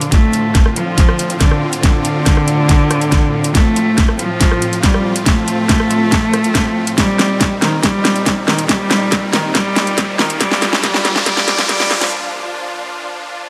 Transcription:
0.01 closed hi-hat
0.12 A2 D3 A3 C4 F4, kick, snare, closed hi-hat
0.33 closed hi-hat
0.55 kick, snare, closed hi-hat
0.66 cross-stick
0.76 F3, closed hi-hat
0.98 kick, snare, closed hi-hat
1.09 cross-stick
1.19 closed hi-hat
1.30 closed hi-hat
1.40 D3, kick, snare, closed hi-hat
1.51 cross-stick
1.73 closed hi-hat
1.83 D3, kick, snare, closed hi-hat
2.05 closed hi-hat
2.26 kick, snare, closed hi-hat
2.37 cross-stick
2.48 closed hi-hat
2.69 kick, snare, closed hi-hat
2.91 cross-stick, closed hi-hat
3.01 closed hi-hat
3.12 kick, snare, closed hi-hat
3.44 closed hi-hat
3.55 F3 A3 C4 F4, kick, snare, closed hi-hat
3.76 closed hi-hat
3.98 kick, snare, closed hi-hat
4.09 cross-stick
4.19 F3, closed hi-hat
4.41 kick, snare, closed hi-hat
4.51 cross-stick
4.62 closed hi-hat
4.73 closed hi-hat
4.83 G3, kick, snare, closed hi-hat
4.94 cross-stick
5.16 closed hi-hat
5.26 A3, kick, snare, closed hi-hat
5.48 closed hi-hat
5.69 kick, snare, closed hi-hat
5.80 cross-stick
5.91 closed hi-hat
6.12 kick, snare, closed hi-hat
6.34 cross-stick, closed hi-hat
6.44 closed hi-hat
6.55 kick, snare, closed hi-hat
6.87 closed hi-hat
6.98 A#2 G3 D#4, kick, snare, closed hi-hat, riser
7.19 snare, closed hi-hat
7.41 kick, snare, closed hi-hat
7.62 D#3, snare, closed hi-hat
7.83 G3, kick, snare, closed hi-hat
8.05 snare, closed hi-hat
8.16 closed hi-hat
8.26 kick, snare, closed hi-hat
8.48 D#3, snare
8.59 closed hi-hat
8.69 G3, kick, snare, closed hi-hat
8.91 snare, closed hi-hat
9.12 kick, snare, closed hi-hat
9.33 D#3, snare, closed hi-hat
9.55 G3, kick, snare, closed hi-hat
9.76 snare, closed hi-hat
9.87 closed hi-hat
9.98 kick, snare, closed hi-hat
10.19 D#3, snare
10.30 closed hi-hat
10.40 F3 G3 D4 F4, kick, snare, closed hi-hat
10.51 snare
10.62 snare, closed hi-hat
10.73 snare
10.83 G3, kick, snare, closed hi-hat
10.94 snare
11.05 snare, closed hi-hat
11.16 snare
11.26 G3, kick, snare, closed hi-hat
11.37 snare
11.48 snare, closed hi-hat
11.59 snare, closed hi-hat
11.69 G3, kick, snare, closed hi-hat
11.80 snare
11.91 snare
12.01 snare, closed hi-hat

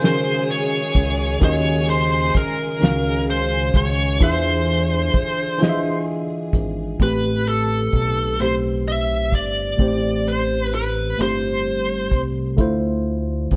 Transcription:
Already playing: C#3 F#3 G#3 C#4 F#4 G#4 F5
0.00 D#3 C#4 F#4, closed hi-hat
0.04 G#4 A#4 C5, snare
0.51 C#5
0.95 C#2, kick, closed hi-hat
1.40 D#2 D#3 C#4 F#4 G#4 C#5, kick, closed hi-hat
1.45 D#5
1.90 C5
2.34 C#2 A#4, kick, closed hi-hat
2.80 C#2 D#3 C#4 F#4 G#4, snare, closed hi-hat
2.84 F5
3.30 C5
3.74 C#2 C#5, kick, closed hi-hat
4.19 E2 D3 E3 D4 F4 G#4, kick, closed hi-hat
4.23 C5 E5
5.14 G#1, kick, closed hi-hat
5.58 E3 D4 F4 G#4, closed hi-hat
5.62 D#5, snare
5.69 E5
6.53 G#1, kick, closed hi-hat
6.99 A1 A2 A3 C4 G4, kick, closed hi-hat
7.03 B4
7.49 A4
7.93 B1, kick, closed hi-hat
8.39 A2 A3 C4 G4 C5, cross-stick, closed hi-hat
8.43 C5
8.88 E5
9.32 G1 D5, kick, closed hi-hat
9.77 A1 A2 A3 C4 G4, kick, closed hi-hat
9.82 C5
10.28 C5
10.72 B4, closed hi-hat
11.18 G1 A2 A3 C4 G4, cross-stick, closed hi-hat
11.22 C5
12.12 C2, kick, closed hi-hat
12.57 D2 D3 A3 E4 F4, kick, closed hi-hat
12.61 C5
13.51 E2, kick, closed hi-hat

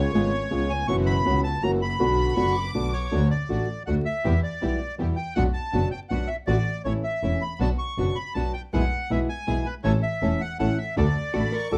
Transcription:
Already playing: C#2 C#3 G#3 B3 C#4 F4 G#4 C#5
0.14 G#1 C#3 G#3 B3 C#4 F4 G#4
0.50 C#2 C#3 G#3 B3 C#4 F4 G#4
0.70 G#5
0.88 F#1 B2 E3 B3 C#4 E4 F#4 C#6
1.06 B5
1.25 C#2 B2 E3 B3 C#4 E4 F#4
1.44 A5
1.62 F#1 C#3 E3 A#3 C#4 E4 F#4 A#5
1.82 B5
1.99 B1 B2 D3 B3 D4 F#4
2.19 B5
2.36 F#1 B2 D3 B3 D4 F#4 C#6
2.55 D6
2.74 B1 B2 D3 B3 D4 F#4
2.93 C#5
3.11 D2 D3 A3 D4 F#4
3.30 D5
3.49 A1 D3 A3 D4 F#4
3.86 D2 D3 A3 D4 F#4 F#5
4.05 E5
4.24 E2 B2 E3 G3 B3 E4 G4
4.43 D5
4.61 B1 B2 E3 G3 B3 E4 G4
4.98 E2 B2 E3 G3 B3 E4 G4
5.16 G5
5.35 B1 B2 F#3 B3 D4 F#4 F#5
5.54 A5
5.73 F#1 B2 F#3 B3 D4 F#4
5.91 G5
6.09 B1 B2 F#3 B3 D4 F#4 F#5
6.27 E5
6.47 A1 D3 A3 D4 F#4 D5
6.85 A1 E3 A3 C#4 E4 C#5
7.04 E5
7.22 E1 E3 A3 C#4 E4
7.42 B5
7.60 B1 B2 F#3 B3 D4 F#4 A5
7.78 C#6
7.98 F#1 B2 F#3 B3 D4 F#4
8.16 B5
8.34 B1 B2 F#3 B3 D4 F#4 A5
8.54 G5
8.73 B1 B2 E3 G#3 B3 E4 G#4 F#5
9.10 B1 B2 E3 G#3 B3 E4 G#4 E5
9.29 G#5
9.47 B1 B2 E3 G#3 B3 E4 G#4
9.66 B4
9.84 A1 E3 A3 C#4 E4 A4 C#5
10.03 E5
10.22 E1 E3 A3 C#4 E4 A4
10.41 F#5
10.59 A1 E3 A3 C#4 E4 A4 F#5
10.78 E5
10.96 D2 D3 A3 D4 F#4 A4 D5
11.34 A1 D3 A3 D4 F#4 A4 B5
11.52 A#4 C#6
11.71 D2 D3 A3 D4 F#4 A4 D6

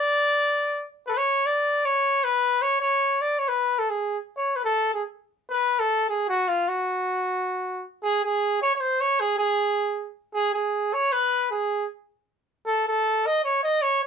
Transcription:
Already playing: D5
1.07 A4 B4
1.12 B4
1.17 C#5
1.46 D5
1.85 C#5
2.24 B4
2.62 C#5
2.81 C#5
3.22 D5
3.39 C#5
3.49 B4
3.79 A4
3.90 G#4
4.37 C#5
4.56 B4
4.65 A4
4.93 G#4
5.50 B4
5.79 A4
6.09 G#4
6.29 F#4
6.48 F4
6.68 F#4
8.02 G#4
8.24 G#4
8.62 C#5
8.75 C#5
8.80 C5
9.01 C#5
9.20 G#4
9.38 G#4
10.34 G#4
10.54 G#4
10.94 C#5
11.12 B4
11.51 G#4
12.66 A4
12.88 A4
13.26 D#5
13.45 C#5
13.63 D#5
13.82 C#5

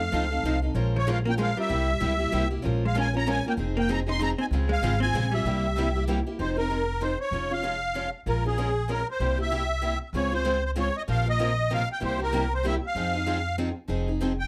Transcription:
Already playing: A3 F5
0.12 C#2 F3 C4 D#4 A4
0.31 C4 D#4 A4
0.43 C2 F3 C4 D#4 A4
0.62 C4 D#4 A4
0.74 A#1 F3 G#3 C#4 F4 A#4
0.96 F3 C#5
1.07 F3 G#3 C#4 F4 A#4
1.12 F5
1.25 A#3 C#4 F4 A#4
1.29 G5
1.38 F3 G#3 C#4 F4 A#4
1.42 F5
1.57 G3 C#4 F4 A#4 E5
1.69 C2 C3 G3 A#3 E4 G4
2.00 C#2 C3 G3 A#3 E4 G4
2.19 A#3 E4 G4
2.32 C2 C3 G3 A#3 E4 G4
2.51 A#3 E4 G4
2.62 A#1 F3 G#3 C#4 F4 A#4
2.85 G#3 F5
2.95 F3 G#3 C#4 F4 A#4
3.00 G#5
3.14 C#4 F4 A#4
3.18 A#5
3.26 F3 G#3 C#4 F4 A#4 G#5
3.45 A#3 C#4 F4 A#4
3.49 G5
3.57 F1 F3 C4 D#4 G#4
3.77 A#3 G5
3.88 F3 C4 D#4 G#4
3.93 A#5
4.07 C4 D#4 G#4 C6
4.19 F3 C4 D#4 G#4 A#5
4.38 C4 D#4 G#4 G#5
4.51 C#2 C#3 G#3 C4 F4 G#4
4.69 G#3 F5
4.82 G#1 C#3 G#3 C4 F4 G#4
5.00 C4 F4 G#4 G#5
5.04 C4
5.13 A#1 C#3 G#3 C4 F4 G#4
5.31 G3 C4 F4 G#4 E5
5.45 C2 C3 G3 A#3 E4 G4
5.78 C3 G3 A#3 E4 G4
5.96 A#3 E4 G4
6.08 C3 G3 A#3 E4 G4
6.26 A#3 E4 G4
6.39 F1 F3 C4 D#4 G#4 C5
6.57 C4 D#4 G#4 A#4
6.70 F3 C4 D#4 G#4
7.01 F3 C4 D#4 G#4 C5
7.21 C#5
7.31 F1 F3 G#3 C#4 F4 C#5
7.50 C#4 F4 C#5 F5
7.62 F3 G#3 C#4 F4 C#5
7.94 F3 G#3 C#4 F4 C#5
8.26 A#1 F3 G#3 C#4 F4 A#4
8.45 C#4 F4 G#4 A#4
8.58 F3 G#3 C#4 F4 A#4
8.88 F3 G#3 C#4 F4 A#4
8.92 A#4
9.11 C5
9.20 C2 C3 G3 A#3 E4 G4
9.38 A#3 E4 G4 E5
9.50 C3 G3 A#3 E4 G4
9.82 C3 G3 A#3 E4 G4
10.13 C#2 C#3 G#3 C4 F4 G#4 C#5
10.32 C4 F4 G#4 C5
10.45 C#3 G#3 C4 F4 G#4
10.65 C5
10.76 C#3 G#3 C4 F4 G#4 C#5
10.97 D#5
11.08 A#1 C3 F3 A#3 F4 A#4 F5
11.26 A#3 F4 A#4 D#5
11.39 C3 F3 A#3 F4 A#4
11.70 C3 F3 A#3 F4 A#4 F5
11.92 G5
12.00 C2 C3 G3 A#3 E4 G4
12.05 C5
12.19 A#3 E4 G4
12.23 A#4
12.33 C3 G3 A#3 E4 G4
12.54 C5
12.65 C3 G3 A#3 E4 G4 E5
12.86 F5
12.95 F2 F3 C4 D#4 G#4
13.13 C4 D#4 G#4
13.26 F3 C4 D#4 G#4
13.58 F3 C4 D#4 G#4
13.88 F1 F3 C4 D#4 G#4
14.08 C4 D#4 G#4
14.21 F3 C4 D#4 G#4
14.39 G5

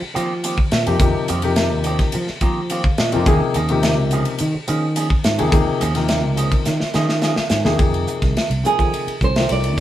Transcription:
0.02 muted clean electric guitar stroke, muted fretless electric bass stroke
0.14 D#3 F3 A#3 C4 G4, hi-hat pedal, ride
0.44 D#3 A#3 C4 G4, hi-hat pedal, ride
0.58 muted fretless electric bass stroke, muted clean electric guitar stroke, kick
0.71 A#2, muted clean electric guitar stroke, snare, hi-hat pedal, ride
0.86 F2 C3 F3 A#3 C4 D#4 G4, ride
1.00 F2 C3 F3 A#3 D#4 G4, kick, hi-hat pedal, ride
1.15 muted clean electric guitar stroke
1.28 F2 D#3 A#3 C4 G4, hi-hat pedal, ride
1.42 C3 F3 A#3 D#4 G4, muted clean electric guitar stroke, ride
1.56 snare, hi-hat pedal, ride
1.72 D#2, muted clean electric guitar stroke
1.84 D#3 A#3 C4 G4, hi-hat pedal, ride
1.99 muted clean electric guitar stroke, kick, snare, ride
2.12 F3, muted clean electric guitar stroke, hi-hat pedal, ride
2.27 muted clean electric guitar stroke, muted fretless electric bass stroke, snare
2.41 D#3 F3 A#3 C4 G4 A#5, kick, hi-hat pedal, ride
2.70 D#3 A#3 C4 G4 F5, hi-hat pedal, ride
2.84 muted fretless electric bass stroke, muted clean electric guitar stroke, kick
2.98 A#2 D#5, muted clean electric guitar stroke, snare, hi-hat pedal, ride
3.12 F2 C3 F3 A#3 C4 D#4 F4 G4, ride
3.26 D#2 C3 F3 A#3 C#4 D#4 G#4, kick, hi-hat pedal, ride
3.42 muted clean electric guitar stroke
3.54 D#2 F3 A#3 C#4 G#4, hi-hat pedal, ride
3.69 C3 F3 A#3 D#4 G4, muted clean electric guitar stroke, ride
3.83 snare, hi-hat pedal, ride
3.98 C#2, muted clean electric guitar stroke
4.11 F3 A#3 C#4 G#4, hi-hat pedal, ride
4.25 muted clean electric guitar stroke, ride
4.38 D#3, muted clean electric guitar stroke, hi-hat pedal, ride
4.54 muted clean electric guitar stroke, muted fretless electric bass stroke
4.68 D#3 F3 A#3 C#4 G#4, hi-hat pedal, ride
4.96 F3 A#3 C#4 G#4, hi-hat pedal, ride
5.10 muted clean electric guitar stroke, muted fretless electric bass stroke, kick
5.24 G#2, muted clean electric guitar stroke, snare, hi-hat pedal, ride
5.38 D#2 C3 F3 A#3 C#4 D#4 G#4, ride
5.51 D#2 C3 F3 A#3 D#4 G#4, kick, hi-hat pedal, ride
5.67 muted clean electric guitar stroke
5.80 D#2 F3 A#3 C#4 G#4, hi-hat pedal, ride
5.94 C3 F3 A#3 D#4 A#4, snare, ride
6.08 snare, hi-hat pedal, ride
6.23 C#2, muted clean electric guitar stroke
6.36 F3 A#3 C#4 G#4, hi-hat pedal, ride
6.52 muted clean electric guitar stroke, kick, ride
6.65 D#3, muted clean electric guitar stroke, snare, hi-hat pedal
6.80 muted clean electric guitar stroke, muted fretless electric bass stroke, snare
6.94 D#3 F3 A#3 C#4 G#4 D#5, snare, hi-hat pedal
7.09 snare
7.21 F3 A#3 C#4 G#4 F5, snare, hi-hat pedal
7.36 muted clean electric guitar stroke, muted fretless electric bass stroke, snare
7.49 G#2 G#5, muted clean electric guitar stroke, snare, hi-hat pedal
7.64 D#2 C3 F3 A#3 C#4 D#4 G#4, snare
7.77 F2 C3 F3 A#3 D#4 G#4, kick, ride
7.94 ride
8.07 hi-hat pedal
8.22 C2, kick, snare, ride
8.37 snare, ride
8.50 C2, ride
8.63 C3 F3 A#3 D#4 G#4, hi-hat pedal
8.79 F3, kick, ride
8.94 ride
9.07 muted fretless electric bass stroke, ride
9.21 C2 C5, kick, hi-hat pedal
9.36 C3 F3 A#3 D#4 F4, snare, ride
9.49 C2 D5, ride
9.64 ride

